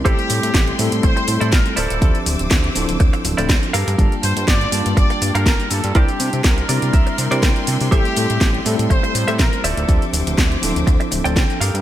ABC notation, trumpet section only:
X:1
M:4/4
L:1/16
Q:"Swing 16ths" 1/4=122
K:Dm
V:1 name="Trumpet section"
G6 z2 c4 B2 A2- | A2 z12 z2 | z2 c2 d4 d3 B3 A2 | G4 B8- B2 z2 |
G6 z2 c4 B2 A2- | A2 z12 z2 |]